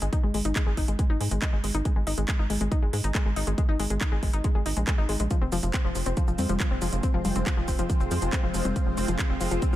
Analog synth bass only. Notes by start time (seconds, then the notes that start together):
0.02 G#1
0.23 G#1
0.34 G#1
0.45 G#1
0.67 G#1
0.77 G#1
0.88 G#1
1.10 G#1
1.21 G#2
1.31 G#1
1.53 G#1
1.64 G#1
1.74 G#1
1.96 G#1
2.07 G#1
2.18 G#1
2.39 G#1
2.50 G#1
2.61 G#1
2.82 G#1
2.93 G#2
3.04 G#1
3.26 G#1
3.36 G#1
3.47 G#1
3.69 G#1
3.79 G#1
3.90 G#1
4.12 G#1
4.23 G#1
4.33 G#1
4.55 G#1
4.66 G#1
4.77 A#1
4.98 G#1
5.09 G#1
5.20 A#1
5.41 F1
5.52 F1
5.63 F1
5.85 F1
5.95 F1
6.06 F1
6.28 F1
6.39 F2
6.49 F1
6.71 F1
6.82 F1
6.93 F1
7.14 F1
7.25 F1
7.36 F1
7.57 F1
7.68 F1
7.79 F1
8.00 F1
8.11 F2
8.22 F1
8.43 F1
8.54 F1
8.65 F1
8.87 F1
8.97 F1
9.08 F1
9.30 F1
9.41 F1
9.51 F1